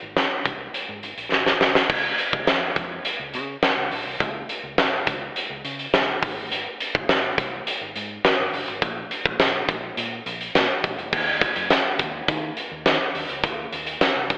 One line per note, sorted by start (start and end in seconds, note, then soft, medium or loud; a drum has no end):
0.02 0.13 G#1 medium
0.17 snare loud
0.17 closed hi-hat medium
0.45 0.67 C2 medium
0.45 kick medium
0.45 closed hi-hat medium
0.74 closed hi-hat medium
0.89 1.00 G#2 medium
1.03 1.14 G#1 medium
1.03 closed hi-hat medium
1.17 1.28 A#1 medium
1.17 closed hi-hat medium
1.32 1.54 G#1 medium
1.32 snare medium
1.46 snare medium
1.61 1.72 C2 medium
1.61 snare medium
1.75 snare medium
1.90 2.11 C#2 loud
1.90 kick loud
1.90 crash medium
2.19 closed hi-hat medium
2.33 2.44 C#2 loud
2.33 kick medium
2.47 2.69 F2 medium
2.47 snare loud
2.47 closed hi-hat loud
2.76 2.98 F2 medium
2.76 kick medium
2.76 closed hi-hat medium
3.05 closed hi-hat medium
3.20 3.36 C#2 medium
3.34 3.56 C#3 medium
3.34 closed hi-hat medium
3.63 snare loud
3.63 closed hi-hat medium
3.77 3.88 C#2 medium
3.91 4.02 A#1 medium
3.91 open hi-hat medium
4.06 4.17 C2 medium
4.20 4.42 C#2 loud
4.20 kick loud
4.20 closed hi-hat medium
4.49 closed hi-hat medium
4.64 4.74 C#2 loud
4.78 5.00 A#1 medium
4.78 snare loud
4.78 closed hi-hat loud
5.07 5.29 C#2 medium
5.07 kick medium
5.07 closed hi-hat medium
5.36 closed hi-hat medium
5.50 5.61 C#2 medium
5.65 5.86 C#3 medium
5.65 closed hi-hat medium
5.79 closed hi-hat medium
5.94 6.15 C#2 medium
5.94 snare loud
5.94 closed hi-hat medium
6.23 6.66 G#1 medium
6.23 kick loud
6.23 open hi-hat medium
6.52 closed hi-hat medium
6.80 closed hi-hat medium
6.95 7.06 G#1 medium
6.95 kick medium
7.09 7.31 G#1 medium
7.09 snare loud
7.09 closed hi-hat medium
7.38 7.60 C2 medium
7.38 kick medium
7.38 closed hi-hat medium
7.67 closed hi-hat medium
7.81 7.92 G#1 medium
7.96 8.17 G#2 loud
7.96 closed hi-hat medium
8.25 snare loud
8.25 closed hi-hat medium
8.39 8.50 G#1 medium
8.53 8.64 F#1 medium
8.53 open hi-hat medium
8.68 8.79 G#1 medium
8.68 closed hi-hat soft
8.82 9.04 A#1 loud
8.82 kick loud
8.82 closed hi-hat medium
9.11 closed hi-hat medium
9.26 9.36 A#1 loud
9.26 kick loud
9.40 9.61 A#1 loud
9.40 snare loud
9.40 closed hi-hat medium
9.40 tambourine medium
9.68 9.90 A#1 medium
9.68 kick medium
9.68 closed hi-hat medium
9.97 10.19 A#2 loud
9.97 closed hi-hat medium
10.26 10.48 A#1 medium
10.26 closed hi-hat medium
10.41 closed hi-hat medium
10.55 10.66 A#2 loud
10.55 snare loud
10.55 closed hi-hat medium
10.55 tambourine medium
10.84 10.95 A#1 medium
10.84 kick medium
10.84 closed hi-hat medium
10.99 11.09 F1 medium
10.99 closed hi-hat medium
11.13 11.45 D#2 loud
11.13 kick loud
11.13 crash loud
11.41 kick loud
11.41 closed hi-hat medium
11.56 11.67 F#2 medium
11.56 closed hi-hat medium
11.70 snare loud
11.70 closed hi-hat loud
11.70 tambourine medium
11.99 12.21 D#2 medium
11.99 kick medium
11.99 closed hi-hat medium
12.28 12.50 D#3 medium
12.28 kick loud
12.28 closed hi-hat medium
12.57 closed hi-hat medium
12.72 12.82 D#2 medium
12.86 12.97 D#3 loud
12.86 snare loud
12.86 closed hi-hat medium
12.86 tambourine medium
13.15 13.26 D#2 loud
13.15 open hi-hat medium
13.29 13.44 C#2 medium
13.29 closed hi-hat soft
13.44 13.65 D#2 loud
13.44 kick loud
13.44 closed hi-hat medium
13.73 13.94 D#2 loud
13.73 closed hi-hat medium
13.87 closed hi-hat medium
14.01 snare loud
14.01 closed hi-hat loud
14.01 tambourine medium
14.16 14.27 C2 medium
14.30 kick medium
14.30 closed hi-hat medium